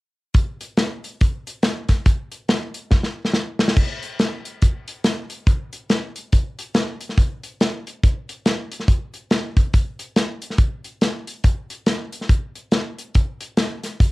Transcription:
0.34 kick, closed hi-hat
0.61 closed hi-hat
0.77 snare, closed hi-hat
1.04 closed hi-hat
1.21 kick, closed hi-hat
1.47 closed hi-hat
1.63 snare, closed hi-hat
1.89 kick, snare, closed hi-hat
2.06 kick, closed hi-hat
2.32 closed hi-hat
2.49 snare, closed hi-hat
2.74 closed hi-hat
2.91 kick, snare
3.04 snare
3.25 snare
3.34 snare
3.59 snare
3.68 snare
3.77 kick, crash
4.03 closed hi-hat
4.19 snare, closed hi-hat
4.45 closed hi-hat
4.62 kick, closed hi-hat
4.88 closed hi-hat
5.04 snare, closed hi-hat
5.30 closed hi-hat
5.47 kick, closed hi-hat
5.73 closed hi-hat
5.89 snare, closed hi-hat
6.16 closed hi-hat
6.32 kick, closed hi-hat
6.59 closed hi-hat
6.74 snare, closed hi-hat
7.01 closed hi-hat
7.09 snare
7.18 kick, closed hi-hat
7.43 closed hi-hat
7.61 snare, closed hi-hat
7.87 closed hi-hat
8.04 kick, closed hi-hat
8.29 closed hi-hat
8.46 snare, closed hi-hat
8.72 closed hi-hat
8.80 snare
8.88 kick, closed hi-hat
9.14 closed hi-hat
9.31 snare, closed hi-hat
9.57 kick, closed hi-hat
9.74 kick, closed hi-hat
9.99 closed hi-hat
10.16 snare, closed hi-hat
10.42 closed hi-hat
10.50 snare
10.58 kick, closed hi-hat
10.84 closed hi-hat
11.01 snare, closed hi-hat
11.28 closed hi-hat
11.44 kick, closed hi-hat
11.70 closed hi-hat
11.87 snare, closed hi-hat
12.13 closed hi-hat
12.21 snare
12.29 kick, closed hi-hat
12.55 closed hi-hat
12.72 snare, closed hi-hat
12.99 closed hi-hat
13.15 kick, closed hi-hat
13.41 closed hi-hat
13.57 snare, closed hi-hat
13.83 snare, closed hi-hat
14.00 kick, closed hi-hat

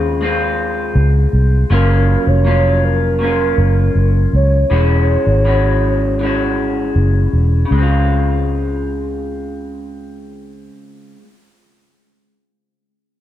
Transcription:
Already playing: D#2 C#3 G#3 C4 F4
0.21 G#3 C4 F4
0.95 C#2
1.33 C2
1.70 F#1 F#3 A#3 C#4 F4 A#4
2.27 F1 C#5
2.44 F#3 A#3 C#4 F4
2.85 A#4
3.19 F#3 A#3
3.23 C#4 F4
3.58 F#1
3.95 F#1
4.33 C#2 C#5
4.70 E1 E3 G#3 C#4 F#4
5.27 G#1
5.44 E3 G#3 C#4 F#4
6.19 E3 G#3
6.23 C#4 F#4
6.96 F#1
7.33 E1
7.65 C#3
7.71 C#2 G#3
7.78 C4
7.82 F4

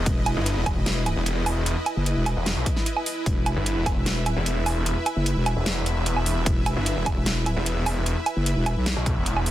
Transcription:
Already playing: E4 B4 D#5
0.06 E1, kick, closed hi-hat
0.26 closed hi-hat, low woodblock
0.37 G1
0.46 closed hi-hat
0.57 E1
0.66 kick, closed hi-hat, low woodblock
0.77 E1
0.86 snare, closed hi-hat
1.06 closed hi-hat, low woodblock
1.17 E1
1.26 closed hi-hat
1.46 open hi-hat, low woodblock
1.57 E1
1.66 closed hi-hat
1.86 closed hi-hat, low woodblock
1.97 F#1
2.06 closed hi-hat
2.16 E1
2.26 closed hi-hat, low woodblock
2.37 E1
2.46 snare, closed hi-hat
2.57 B1
2.66 kick, closed hi-hat
2.76 snare
2.86 closed hi-hat
2.97 low woodblock
3.06 open hi-hat
3.26 E1 E5, kick, closed hi-hat
3.46 closed hi-hat, low woodblock
3.57 G1
3.66 closed hi-hat
3.77 E1
3.86 kick, closed hi-hat, low woodblock
3.96 E1
4.06 snare, closed hi-hat
4.26 closed hi-hat, low woodblock
4.37 E1
4.46 closed hi-hat
4.66 open hi-hat, low woodblock
4.77 E1
4.86 closed hi-hat
5.06 closed hi-hat, low woodblock
5.16 F#1
5.26 closed hi-hat
5.37 E1
5.46 closed hi-hat, low woodblock
5.57 E1
5.66 snare, closed hi-hat
5.86 closed hi-hat
5.97 E1
6.06 closed hi-hat
6.16 low woodblock
6.26 open hi-hat
6.46 E1, kick, closed hi-hat
6.66 closed hi-hat, low woodblock
6.77 G1
6.86 closed hi-hat
6.97 E1
7.06 kick, closed hi-hat, low woodblock
7.16 E1
7.26 snare, closed hi-hat
7.46 closed hi-hat, low woodblock
7.57 E1
7.66 closed hi-hat
7.86 open hi-hat, low woodblock
7.97 E1
8.06 closed hi-hat
8.26 closed hi-hat, low woodblock
8.36 F#1
8.46 closed hi-hat
8.56 E1
8.66 closed hi-hat, low woodblock
8.76 B1
8.86 snare, closed hi-hat
8.97 B1
9.06 kick, closed hi-hat
9.17 E1
9.26 closed hi-hat
9.37 low woodblock
9.46 open hi-hat

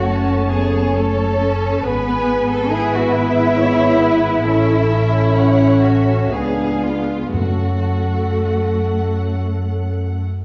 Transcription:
Already playing: F#1 F#2 A3 C#4 F#4 A4
0.04 C#4 C#5 A5
0.49 B3 G#4
0.94 A3 C#4 A4 A5
1.39 C#4
1.82 G#1 B3 G#4 B4 G#5
2.51 A4
2.70 B3 E4 G#4 B4 E5
2.94 F#4
3.13 E4
3.59 B3 C#5
4.03 B4
4.46 A1 C#4 E4 A4 E5
4.90 C#4
5.35 C#4 C#5 F#5
5.82 F#4 E5
6.30 C#2 B3 D4 G#4 B4 F5
6.83 F4
7.33 F#2 A3 C#4 F#4 A4 F#5

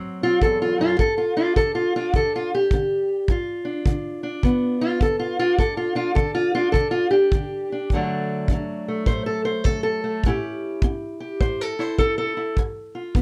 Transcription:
Already playing: A2 F#3 C4
0.23 C4 F4
0.42 E2 A4, kick
0.62 F4
0.79 F#2 F4
0.99 G2 A4, kick
1.18 F4
1.36 D4 F4
1.56 D3 A4, kick
1.75 F4
1.96 D4 F4
2.14 D3 A4, kick
2.36 F4
2.55 G4
2.71 D3, kick
3.28 G2 F4, kick
3.65 D4
3.86 D3, kick
4.23 D4
4.43 D3 B3, kick
4.81 F4
5.01 D3 A4, kick
5.19 F4
5.39 D4 F4
5.59 G2 A4, kick
5.77 F4
5.95 D4 F4
6.15 D3 A4, kick
6.35 F4
6.55 D4 F4
6.72 D3 A4, kick
6.91 F4
7.11 D4 G4
7.32 D3, kick
7.72 D4
7.90 D2 D3, kick
7.95 F#3 A3 D4
8.48 D3, kick
8.52 F#3
8.88 A3
9.06 A2 C5, kick
9.26 A4
9.45 C5
9.64 D3 A4, kick
9.83 A4
10.04 A3
10.24 A2 C#4, kick
10.28 E4 G4
10.82 C#4, kick
11.20 G4
11.41 A2 C5, kick
11.61 A4
11.79 E4 C5
11.98 C#4 A4, kick
12.18 A4
12.37 E4
12.57 G2, kick
12.95 F4
13.15 D3 B3, kick

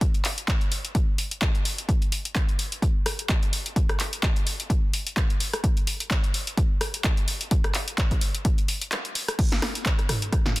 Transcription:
0.01 kick, closed hi-hat
0.14 closed hi-hat
0.25 clap, open hi-hat
0.38 closed hi-hat
0.48 kick, clap, closed hi-hat
0.61 closed hi-hat
0.72 open hi-hat
0.85 closed hi-hat
0.95 kick, closed hi-hat
1.18 open hi-hat
1.31 closed hi-hat
1.42 kick, clap, closed hi-hat
1.55 closed hi-hat
1.65 open hi-hat
1.78 closed hi-hat
1.89 kick, closed hi-hat
2.02 closed hi-hat
2.12 open hi-hat
2.25 closed hi-hat
2.35 kick, clap, closed hi-hat
2.49 closed hi-hat
2.59 open hi-hat
2.72 closed hi-hat
2.82 kick, closed hi-hat
3.06 cross-stick, open hi-hat
3.19 closed hi-hat
3.29 kick, clap, closed hi-hat
3.43 closed hi-hat
3.53 open hi-hat
3.66 closed hi-hat
3.76 kick, closed hi-hat
3.89 cross-stick, closed hi-hat
4.00 clap, open hi-hat
4.13 closed hi-hat
4.23 kick, clap, closed hi-hat
4.36 closed hi-hat
4.47 open hi-hat
4.60 closed hi-hat
4.70 kick, closed hi-hat
4.94 open hi-hat
5.07 closed hi-hat
5.17 kick, clap, closed hi-hat
5.30 closed hi-hat
5.40 open hi-hat
5.54 cross-stick, closed hi-hat
5.64 kick, closed hi-hat
5.77 closed hi-hat
5.87 open hi-hat
6.00 closed hi-hat
6.11 kick, clap, closed hi-hat
6.24 closed hi-hat
6.34 open hi-hat
6.47 closed hi-hat
6.57 kick, closed hi-hat
6.81 cross-stick, open hi-hat
6.94 closed hi-hat
7.04 kick, clap, closed hi-hat
7.17 closed hi-hat
7.28 open hi-hat
7.41 closed hi-hat
7.51 kick, closed hi-hat
7.64 cross-stick, closed hi-hat
7.75 clap, open hi-hat
7.88 closed hi-hat
7.98 kick, clap, closed hi-hat
8.11 kick, closed hi-hat
8.21 open hi-hat
8.35 closed hi-hat
8.45 kick, closed hi-hat
8.58 closed hi-hat
8.68 open hi-hat
8.81 closed hi-hat
8.92 clap, closed hi-hat
9.05 closed hi-hat
9.15 open hi-hat
9.28 cross-stick, closed hi-hat
9.39 kick, closed hi-hat, crash
9.52 snare, closed hi-hat
9.62 cross-stick, snare, open hi-hat
9.75 closed hi-hat
9.86 kick, clap, closed hi-hat
9.99 cross-stick, closed hi-hat
10.09 cross-stick, mid tom, open hi-hat
10.22 closed hi-hat
10.32 kick, cross-stick, closed hi-hat
10.46 snare, mid tom
10.56 open hi-hat

